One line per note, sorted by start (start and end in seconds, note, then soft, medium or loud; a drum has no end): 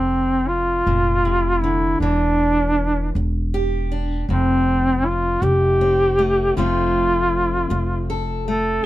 0.00 0.83 F1 medium
0.00 2.01 F2 medium
0.00 0.50 C4 medium
0.48 1.63 F4 medium
0.86 1.97 F1 medium
0.86 1.25 A#2 medium
1.25 1.63 C3 medium
1.62 2.01 D3 soft
1.62 2.00 E4 medium
2.00 3.11 E1 medium
2.00 3.15 E3 medium
2.00 3.11 D4 medium
3.15 4.25 E1 medium
3.15 muted steel-string acoustic guitar stroke medium
3.54 4.25 G4 medium
3.92 4.25 D4 soft
4.29 5.39 F1 medium
4.29 5.42 F2 medium
4.29 5.08 C4 medium
5.06 5.46 F4 medium
5.42 6.52 F1 medium
5.42 6.56 G4 medium
5.42 muted steel-string acoustic guitar stroke medium
5.81 6.59 C4 soft
6.19 6.58 A3 soft
6.57 7.67 F1 medium
6.57 7.69 F2 medium
6.57 8.80 F3 soft
6.57 8.47 A3 soft
6.57 8.83 C4 soft
6.57 8.05 F4 medium
7.70 8.81 F1 medium
7.70 muted steel-string acoustic guitar stroke medium
8.10 8.81 A4 medium
8.46 8.81 A3 soft
8.46 8.86 A4 medium